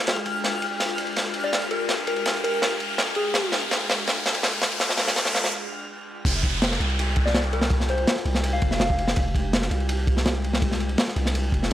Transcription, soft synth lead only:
1.44 D5
1.53 D5
1.71 A#4
2.08 A#4
2.44 A#4
3.16 G#4
7.26 D5
7.35 D5
7.53 A#4
7.90 C5
8.53 F5
8.72 F5

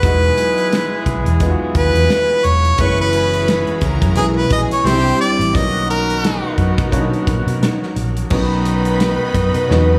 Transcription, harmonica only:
Already playing: B4
1.77 B4
2.46 C#5
2.81 B4
3.01 B4
4.17 G#4
4.37 B4
4.52 D#5
4.72 C#5
4.86 C5
5.20 D5
5.55 D#5
5.90 A#4

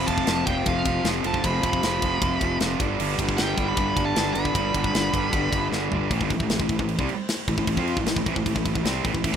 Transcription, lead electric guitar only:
0.07 A5
0.46 G5
0.68 F5
1.27 A5
1.46 B5
3.37 G5
3.68 B5
4.05 A5
4.34 B5

